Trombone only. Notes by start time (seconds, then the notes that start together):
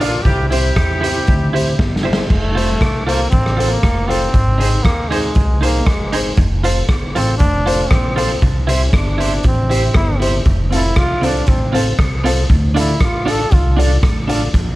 2.30 A3
3.07 A#3
3.30 C4
3.69 A#3
4.08 C4
4.83 A#3
5.09 G#3
5.61 A#3
5.86 G#3
7.16 C4
7.38 D4
7.89 C4
8.87 C#4
8.95 D4
9.47 C4
9.96 E4
10.75 E4
10.98 F4
11.24 D4
11.48 C4
12.78 E4
13.04 F4
13.30 A4
13.54 F4